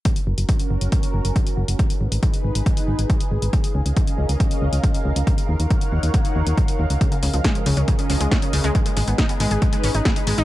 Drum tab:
HH |xx-xxx-xxx-xxx-x|xx-xxx-xxx-xxx-x|xx-xxx-xxx-xxx-x|xx-xxx-xxx-xxx-x|
SD |----------------|----------------|----------------|----------------|
BD |o---o---o---o---|o---o---o---o---|o---o---o---o---|o---o---o---o---|

HH |xxoxxxoxxxoxxxox|xxoxxxoxxxoxxxox|
SD |----o-------o---|--o-o-------o---|
BD |o---o---o---o---|o---o---o---o---|